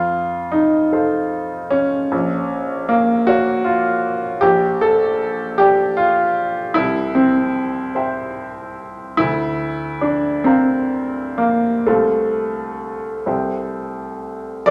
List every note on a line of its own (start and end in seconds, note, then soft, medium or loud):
0.00 0.89 F2 medium
0.00 0.52 F4 medium
0.52 1.72 D#4 medium
0.92 2.08 A4 soft
0.92 2.08 C5 soft
0.92 2.08 F5 soft
1.71 2.89 C#4 medium
2.12 3.25 A#1 medium
2.89 3.28 A#3 medium
3.27 3.66 F#4 medium
3.27 4.39 A#4 soft
3.27 4.40 C#5 soft
3.27 4.40 F5 soft
3.64 4.43 F4 medium
4.41 5.56 A#1 medium
4.41 4.81 G4 medium
4.81 5.60 A4 medium
5.58 5.98 G4 medium
5.58 6.74 D5 soft
5.58 6.74 G5 soft
5.97 6.77 F4 medium
6.74 7.92 C2 medium
6.74 7.15 E4 medium
7.15 7.95 C4 medium
7.95 9.15 C5 soft
7.95 9.15 E5 soft
7.95 9.15 G5 soft
9.17 10.43 D2 medium
9.17 10.02 E4 medium
10.01 10.45 D4 medium
10.44 11.38 C4 medium
10.44 11.83 A#4 soft
10.44 11.83 F5 soft
10.44 11.83 A#5 soft
11.38 11.87 A#3 medium
11.87 13.22 C2 soft
11.87 14.21 A3 medium
11.87 13.22 C5 soft
11.87 13.22 F5 soft
11.87 13.22 A5 soft
13.26 14.63 C2 soft
13.26 14.63 C5 soft
13.26 14.63 E5 soft
13.26 14.63 G5 soft
14.66 14.70 F1 medium
14.66 14.70 A4 medium
14.66 14.70 D5 loud